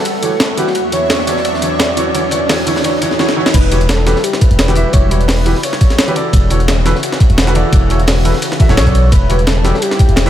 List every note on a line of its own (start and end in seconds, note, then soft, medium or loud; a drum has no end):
0.00 0.72 G3 medium
0.00 0.72 E4 medium
0.00 0.59 A4 loud
0.00 0.72 F#5 medium
0.00 0.71 C#6 medium
0.00 riser medium
0.05 closed hi-hat medium
0.05 ride medium
0.22 0.30 E3 medium
0.22 0.30 E4 medium
0.22 0.31 F#4 medium
0.22 0.31 G4 medium
0.22 0.31 C#5 medium
0.22 closed hi-hat medium
0.22 ride medium
0.40 snare loud
0.40 closed hi-hat medium
0.40 ride medium
0.57 0.65 E3 medium
0.57 0.65 E4 medium
0.57 0.94 F#4 loud
0.57 0.66 F#4 medium
0.57 0.66 G4 medium
0.57 0.66 B4 medium
0.57 closed hi-hat medium
0.57 ride medium
0.67 snare medium
0.75 3.17 E2 medium
0.75 3.17 F#3 medium
0.75 3.17 D4 medium
0.75 3.17 E5 medium
0.75 3.17 C#6 medium
0.75 closed hi-hat medium
0.75 ride medium
0.92 1.00 E3 medium
0.92 1.00 E4 medium
0.92 1.00 F#4 medium
0.92 1.29 C#5 loud
0.92 1.01 C#5 medium
0.92 closed hi-hat medium
0.92 ride medium
1.10 snare loud
1.10 closed hi-hat medium
1.10 ride medium
1.19 snare soft
1.27 1.35 E3 medium
1.27 1.35 E4 medium
1.27 1.35 F#4 medium
1.27 1.36 C#5 medium
1.27 3.19 D5 loud
1.27 snare medium
1.27 closed hi-hat medium
1.27 ride medium
1.37 snare medium
1.45 closed hi-hat medium
1.45 ride medium
1.54 snare soft
1.62 1.70 E3 medium
1.62 1.70 E4 medium
1.62 1.70 F#4 medium
1.62 1.71 C#5 medium
1.62 closed hi-hat medium
1.62 ride medium
1.79 snare loud
1.79 closed hi-hat medium
1.79 ride medium
1.97 2.05 E3 medium
1.97 2.05 E4 medium
1.97 2.05 F#4 medium
1.97 2.05 C#5 medium
1.97 closed hi-hat loud
1.97 ride medium
2.14 2.22 E3 medium
2.14 2.22 E4 medium
2.14 2.23 F#4 medium
2.14 2.23 C#5 medium
2.14 closed hi-hat medium
2.14 ride medium
2.31 2.40 E3 medium
2.31 2.40 E4 medium
2.31 2.40 F#4 medium
2.31 2.40 C#5 medium
2.31 closed hi-hat loud
2.31 ride medium
2.49 2.57 E3 medium
2.49 2.57 E4 medium
2.49 2.58 F#4 medium
2.49 2.58 C#5 medium
2.49 snare loud
2.49 closed hi-hat medium
2.49 open hi-hat medium
2.66 2.75 E3 medium
2.66 2.75 E4 medium
2.66 2.75 F#4 medium
2.66 2.75 C#5 medium
2.66 closed hi-hat loud
2.66 ride medium
2.76 snare medium
2.76 snare soft
2.84 2.92 E3 medium
2.84 2.92 E4 medium
2.84 2.92 F#4 medium
2.84 2.93 C#5 medium
2.84 closed hi-hat medium
2.84 ride medium
3.01 3.09 E3 medium
3.01 3.10 E4 medium
3.01 3.10 F#4 medium
3.01 3.10 C#5 medium
3.01 closed hi-hat medium
3.01 ride medium
3.11 snare soft
3.19 3.27 E3 medium
3.19 3.27 E4 medium
3.19 3.27 F#4 medium
3.19 3.28 C#5 medium
3.19 snare medium
3.29 snare medium
3.36 3.44 E3 medium
3.36 3.45 E4 medium
3.36 3.45 F#4 medium
3.36 3.45 C#5 medium
3.46 snare medium
3.54 4.14 E1 medium
3.54 10.30 C#3 medium
3.54 6.30 G3 medium
3.54 6.30 E4 medium
3.54 3.90 B4 loud
3.54 kick loud
3.54 closed hi-hat medium
3.54 ride medium
3.54 crash loud
3.71 3.79 E3 medium
3.71 3.79 E4 medium
3.71 3.80 F#4 medium
3.71 3.80 G4 medium
3.71 3.80 C#5 medium
3.71 closed hi-hat medium
3.71 ride medium
3.81 closed hi-hat soft
3.89 4.25 A4 loud
3.89 snare loud
3.89 closed hi-hat loud
3.89 ride medium
3.98 snare soft
4.06 4.14 E3 medium
4.06 4.14 E4 medium
4.06 4.14 F#4 medium
4.06 4.15 G4 medium
4.06 4.15 B4 loud
4.06 snare medium
4.06 snare soft
4.06 closed hi-hat medium
4.06 ride medium
4.16 snare soft
4.24 4.43 G4 medium
4.24 closed hi-hat medium
4.24 ride medium
4.33 snare soft
4.41 4.93 B4 loud
4.41 kick loud
4.41 closed hi-hat medium
4.41 ride medium
4.51 4.84 E1 medium
4.51 closed hi-hat soft
4.59 snare loud
4.59 closed hi-hat loud
4.59 ride medium
4.67 4.72 E3 medium
4.67 4.72 E4 medium
4.67 4.72 F#4 medium
4.67 4.73 G4 medium
4.67 4.73 B4 loud
4.67 snare soft
4.67 closed hi-hat soft
4.75 5.09 E3 medium
4.75 5.09 E4 medium
4.75 5.09 F#4 medium
4.75 5.09 G4 medium
4.75 5.10 E5 loud
4.75 closed hi-hat medium
4.75 ride medium
4.93 5.54 E1 medium
4.93 5.10 C#5 loud
4.93 kick loud
4.93 closed hi-hat medium
4.93 ride medium
5.10 5.19 E3 medium
5.10 5.19 E4 medium
5.10 5.19 F#4 medium
5.10 5.19 G4 medium
5.10 5.60 B4 loud
5.10 5.19 C#5 medium
5.10 closed hi-hat medium
5.10 ride medium
5.21 closed hi-hat soft
5.28 snare loud
5.28 closed hi-hat medium
5.28 open hi-hat medium
5.45 5.54 E3 medium
5.45 5.54 E4 medium
5.45 5.54 F#4 medium
5.45 5.54 G4 medium
5.45 5.54 B4 loud
5.45 closed hi-hat medium
5.45 ride medium
5.55 snare soft
5.63 6.12 C#5 loud
5.63 closed hi-hat medium
5.63 ride loud
5.73 snare medium
5.81 kick loud
5.81 closed hi-hat medium
5.81 ride medium
5.90 snare soft
5.90 closed hi-hat soft
5.98 snare loud
5.98 closed hi-hat loud
5.98 ride medium
6.07 6.12 E3 medium
6.07 6.12 E4 medium
6.07 6.12 F#4 medium
6.07 6.12 G4 medium
6.07 6.12 B4 loud
6.07 closed hi-hat soft
6.15 6.48 E3 medium
6.15 6.49 E4 medium
6.15 6.49 F#4 medium
6.15 6.49 A4 medium
6.15 6.49 D5 loud
6.15 closed hi-hat medium
6.15 ride medium
6.33 6.93 E1 medium
6.33 9.10 E3 medium
6.33 9.09 F#4 medium
6.33 kick loud
6.33 closed hi-hat medium
6.33 ride medium
6.50 6.58 E3 medium
6.50 6.58 E4 medium
6.50 6.59 F#4 medium
6.50 6.59 A4 medium
6.50 6.59 C#5 medium
6.50 closed hi-hat medium
6.50 ride medium
6.60 closed hi-hat soft
6.68 snare loud
6.68 closed hi-hat medium
6.68 ride medium
6.79 snare soft
6.85 6.93 E3 medium
6.85 6.93 E4 medium
6.85 6.94 F#4 medium
6.85 6.94 A4 medium
6.85 6.94 B4 loud
6.85 snare medium
6.85 snare soft
6.85 closed hi-hat medium
6.85 ride medium
6.95 snare soft
7.03 closed hi-hat medium
7.03 ride medium
7.12 snare soft
7.20 kick loud
7.20 closed hi-hat medium
7.20 ride medium
7.30 7.63 E1 medium
7.30 closed hi-hat soft
7.38 snare loud
7.38 closed hi-hat medium
7.38 ride medium
7.46 7.51 E3 medium
7.46 7.51 E4 medium
7.46 7.51 F#4 medium
7.46 7.52 A4 medium
7.46 7.52 B4 loud
7.46 snare soft
7.46 closed hi-hat soft
7.55 7.88 E3 medium
7.55 7.88 E4 medium
7.55 7.88 F#4 medium
7.55 7.88 A4 medium
7.55 7.89 D5 medium
7.55 closed hi-hat medium
7.55 ride medium
7.73 8.33 E1 medium
7.73 kick loud
7.73 closed hi-hat medium
7.73 ride medium
7.90 7.98 E3 medium
7.90 7.98 E4 medium
7.90 7.98 F#4 medium
7.90 7.98 A4 medium
7.90 7.98 C#5 medium
7.90 closed hi-hat medium
7.90 ride medium
8.00 closed hi-hat soft
8.07 snare loud
8.07 closed hi-hat medium
8.07 open hi-hat medium
8.24 8.33 E3 medium
8.24 8.33 E4 medium
8.24 8.33 F#4 medium
8.24 8.33 A4 medium
8.24 8.33 B4 medium
8.24 closed hi-hat medium
8.24 ride medium
8.34 snare soft
8.42 closed hi-hat medium
8.42 ride loud
8.52 snare soft
8.59 8.67 E3 medium
8.59 8.67 E4 medium
8.59 8.67 F#4 medium
8.59 8.67 A4 medium
8.59 8.67 E5 medium
8.59 kick loud
8.59 closed hi-hat medium
8.59 ride medium
8.69 8.79 D1 medium
8.69 8.84 E3 medium
8.69 8.84 E4 medium
8.69 8.84 F#4 medium
8.69 8.85 A4 medium
8.69 8.85 C#5 loud
8.69 snare soft
8.69 closed hi-hat soft
8.77 9.11 B1 medium
8.77 9.10 C#5 loud
8.77 snare loud
8.77 closed hi-hat medium
8.77 ride medium
8.86 9.11 E3 medium
8.86 9.11 E4 medium
8.86 9.11 F#4 medium
8.86 9.11 A4 medium
8.86 9.12 D5 medium
8.86 kick medium
8.86 closed hi-hat soft
8.95 closed hi-hat medium
8.95 ride medium
9.12 9.72 E1 medium
9.12 10.30 G3 medium
9.12 10.30 E4 loud
9.12 9.49 B4 loud
9.12 kick loud
9.12 closed hi-hat medium
9.12 ride medium
9.29 9.37 E3 medium
9.29 9.37 E4 medium
9.29 9.38 F#4 medium
9.29 9.38 G4 medium
9.29 9.38 C#5 medium
9.29 closed hi-hat medium
9.29 ride medium
9.39 closed hi-hat soft
9.47 9.84 A4 loud
9.47 snare loud
9.47 closed hi-hat medium
9.47 ride medium
9.56 snare soft
9.64 9.72 E3 medium
9.64 9.72 E4 medium
9.64 9.72 F#4 medium
9.64 9.73 G4 medium
9.64 9.73 B4 loud
9.64 snare medium
9.64 snare soft
9.64 closed hi-hat medium
9.64 ride medium
9.74 snare soft
9.82 10.30 G4 loud
9.82 closed hi-hat medium
9.82 ride medium
9.91 snare medium
9.91 snare soft
9.99 kick loud
9.99 closed hi-hat medium
9.99 ride medium
10.09 10.30 E1 medium
10.09 closed hi-hat soft
10.16 snare loud
10.16 closed hi-hat medium
10.16 ride medium
10.26 10.30 E3 medium
10.26 10.30 E4 medium
10.26 10.30 F#4 medium
10.26 10.30 G4 medium
10.26 snare soft
10.26 closed hi-hat soft